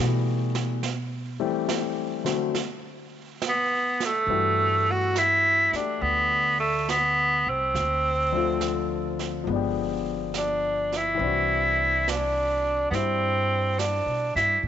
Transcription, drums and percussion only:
0.55 snare soft
0.83 brush sweep soft
0.83 snare soft
1.69 snare medium
2.26 snare soft
2.55 brush sweep soft
2.55 snare soft
3.42 snare medium
4.00 snare soft
4.29 brush sweep soft
5.16 snare soft
5.16 hi-hat pedal soft
5.73 snare soft
6.02 brush sweep soft
6.89 snare soft
6.89 hi-hat pedal soft
7.75 brush sweep soft
7.75 snare soft
8.61 snare soft
8.61 hi-hat pedal soft
9.19 snare soft
9.47 brush sweep soft
10.34 snare soft
10.34 hi-hat pedal medium
10.93 snare soft
11.21 brush sweep soft
12.08 snare soft
12.08 hi-hat pedal soft
12.93 brush sweep soft
12.93 snare soft
13.79 snare soft
13.79 hi-hat pedal soft
14.36 snare soft

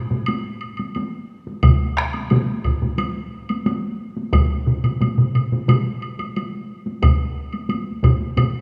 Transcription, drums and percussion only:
0.10 taiko low-mid medium
0.10 taiko mid medium
0.10 taiko high medium
0.26 taiko high medium
0.26 high woodblock medium
0.61 high woodblock soft
0.77 taiko high medium
0.77 high woodblock soft
0.95 taiko high medium
0.95 high woodblock soft
1.47 taiko high medium
1.63 taiko medium
1.63 taiko low-mid medium
1.63 taiko mid medium
1.63 taiko high medium
1.63 high woodblock soft
1.97 taiko rim medium
2.13 taiko high medium
2.13 high woodblock soft
2.30 taiko low-mid medium
2.30 taiko mid loud
2.30 taiko high medium
2.30 high woodblock soft
2.64 taiko medium
2.64 taiko low-mid medium
2.64 taiko mid medium
2.64 high woodblock soft
2.82 taiko low-mid medium
2.82 taiko mid medium
2.82 taiko high medium
2.98 taiko high medium
2.98 high woodblock soft
3.49 taiko high medium
3.49 high woodblock soft
3.66 taiko high medium
3.66 high woodblock soft
4.17 taiko high medium
4.33 taiko medium
4.33 taiko low-mid medium
4.33 taiko mid medium
4.33 taiko high medium
4.33 high woodblock medium
4.67 taiko low-mid medium
4.67 taiko mid medium
4.84 taiko low-mid medium
4.84 taiko mid medium
4.84 taiko high soft
4.84 high woodblock soft
5.01 taiko low-mid medium
5.01 taiko mid medium
5.01 taiko high medium
5.01 high woodblock soft
5.18 taiko low-mid medium
5.18 taiko mid medium
5.35 taiko low-mid medium
5.35 taiko mid medium
5.35 high woodblock soft
5.52 taiko low-mid medium
5.52 taiko mid medium
5.52 taiko high soft
5.68 taiko low-mid loud
5.68 taiko mid medium
5.68 taiko high medium
5.68 high woodblock soft
6.02 high woodblock soft
6.19 taiko high soft
6.19 high woodblock soft
6.36 taiko high medium
6.36 high woodblock soft
6.86 taiko high soft
7.02 taiko medium
7.02 taiko low-mid medium
7.02 taiko mid medium
7.02 taiko high medium
7.02 high woodblock medium
7.53 taiko high soft
7.53 high woodblock soft
7.69 taiko high medium
7.69 high woodblock soft
8.03 taiko medium
8.03 taiko low-mid medium
8.03 taiko mid medium
8.03 taiko high soft
8.03 high woodblock soft
8.20 taiko high soft
8.37 taiko low-mid medium
8.37 taiko mid medium
8.37 taiko high medium
8.37 high woodblock medium

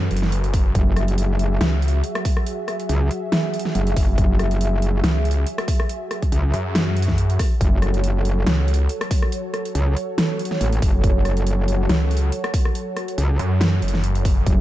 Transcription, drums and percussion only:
0.11 closed hi-hat soft
0.17 closed hi-hat medium
0.22 snare soft
0.32 closed hi-hat medium
0.44 closed hi-hat soft
0.54 kick loud
0.54 open hi-hat medium
0.75 kick loud
0.75 closed hi-hat medium
0.96 cross-stick soft
0.96 closed hi-hat soft
1.08 closed hi-hat soft
1.18 closed hi-hat medium
1.39 closed hi-hat medium
1.61 snare loud
1.61 closed hi-hat medium
1.82 closed hi-hat soft
1.88 closed hi-hat medium
2.04 closed hi-hat medium
2.15 cross-stick medium
2.15 closed hi-hat soft
2.25 kick loud
2.25 open hi-hat medium
2.37 cross-stick medium
2.46 closed hi-hat medium
2.68 cross-stick medium
2.68 closed hi-hat soft
2.80 closed hi-hat soft
2.89 closed hi-hat medium
3.11 closed hi-hat medium
3.32 snare loud
3.32 closed hi-hat medium
3.54 closed hi-hat soft
3.59 closed hi-hat medium
3.65 snare soft
3.75 closed hi-hat medium
3.87 closed hi-hat soft
3.97 kick loud
3.97 open hi-hat medium
4.18 kick loud
4.18 closed hi-hat medium
4.39 cross-stick medium
4.39 closed hi-hat soft
4.51 closed hi-hat soft
4.61 closed hi-hat medium
4.82 closed hi-hat medium
5.04 snare loud
5.04 closed hi-hat medium
5.25 closed hi-hat soft
5.31 closed hi-hat medium
5.47 closed hi-hat medium
5.58 cross-stick medium
5.58 closed hi-hat soft
5.68 kick loud
5.68 open hi-hat medium
5.80 cross-stick medium
5.89 closed hi-hat medium
6.11 cross-stick medium
6.11 closed hi-hat medium
6.22 kick medium
6.22 closed hi-hat soft
6.32 closed hi-hat medium
6.54 closed hi-hat medium
6.75 snare loud
6.75 closed hi-hat medium
6.97 closed hi-hat soft
7.02 closed hi-hat medium
7.08 kick medium
7.08 snare soft
7.18 closed hi-hat medium
7.30 closed hi-hat soft
7.39 kick loud
7.39 cross-stick medium
7.39 open hi-hat loud
7.61 kick loud
7.61 closed hi-hat medium
7.82 cross-stick medium
7.82 closed hi-hat medium
7.94 closed hi-hat soft
8.04 closed hi-hat medium
8.25 closed hi-hat medium
8.47 snare loud
8.47 closed hi-hat medium
8.68 closed hi-hat medium
8.74 closed hi-hat medium
8.89 closed hi-hat medium
9.01 cross-stick medium
9.01 closed hi-hat soft
9.11 kick loud
9.11 open hi-hat medium
9.23 cross-stick medium
9.32 closed hi-hat medium
9.54 cross-stick medium
9.54 closed hi-hat medium
9.65 closed hi-hat soft
9.75 closed hi-hat medium
9.97 closed hi-hat medium
10.18 snare loud
10.18 closed hi-hat medium
10.39 closed hi-hat medium
10.45 closed hi-hat medium
10.51 snare soft
10.61 closed hi-hat medium
10.73 closed hi-hat soft
10.82 kick loud
10.82 open hi-hat medium
11.04 kick loud
11.04 closed hi-hat medium
11.25 cross-stick soft
11.25 closed hi-hat medium
11.37 closed hi-hat soft
11.47 closed hi-hat medium
11.68 closed hi-hat medium
11.89 snare loud
11.89 closed hi-hat medium
12.11 closed hi-hat medium
12.17 closed hi-hat medium
12.32 closed hi-hat medium
12.44 cross-stick medium
12.44 closed hi-hat soft
12.54 kick loud
12.54 open hi-hat medium
12.65 cross-stick medium
12.75 closed hi-hat medium
12.97 cross-stick soft
12.97 closed hi-hat medium
13.08 closed hi-hat soft
13.18 closed hi-hat medium
13.39 closed hi-hat medium
13.61 snare loud
13.61 closed hi-hat medium
13.82 closed hi-hat soft
13.88 closed hi-hat medium
13.94 snare soft
14.04 closed hi-hat medium
14.15 closed hi-hat soft
14.25 kick loud
14.25 open hi-hat medium
14.46 kick loud
14.46 closed hi-hat medium

